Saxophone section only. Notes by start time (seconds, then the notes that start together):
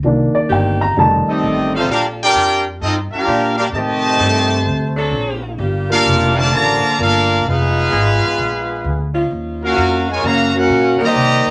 0.49 D#3 A#3 C4 G4
1.74 F3 A#3 D4 A4
3.27 F3 A#3 D4 G4
4.20 G3 C4 D#4 A4
4.96 F#3 C4 D4 A4
5.59 G3 A#3 F4 G4
7.90 F3 B3 D#4 G#4
9.14 F3 C#4 D#4 F4
9.75 F3 C#4 D#4 F#4
10.98 G3 C4 D#4 A#4